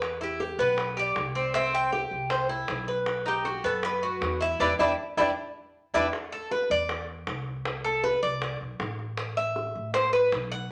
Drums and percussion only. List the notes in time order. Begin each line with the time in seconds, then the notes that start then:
0.02 high bongo
0.40 high bongo
0.78 high bongo
1.16 high bongo, low bongo
1.54 high bongo
1.74 high bongo
1.93 high bongo
2.30 high bongo
2.49 high bongo
2.68 high bongo, low bongo
2.87 high bongo
3.06 high bongo
3.45 high bongo
3.83 high bongo
4.22 high bongo, low bongo
4.60 low bongo
4.79 low bongo
5.18 low bongo
5.94 low bongo
6.13 high bongo
6.51 high bongo
6.89 high bongo
7.27 high bongo, low bongo
7.65 high bongo
7.85 high bongo
8.04 high bongo
8.23 high bongo
8.42 high bongo
8.80 high bongo, low bongo
8.99 high bongo
9.17 high bongo
9.56 high bongo
9.94 high bongo
10.32 high bongo, low bongo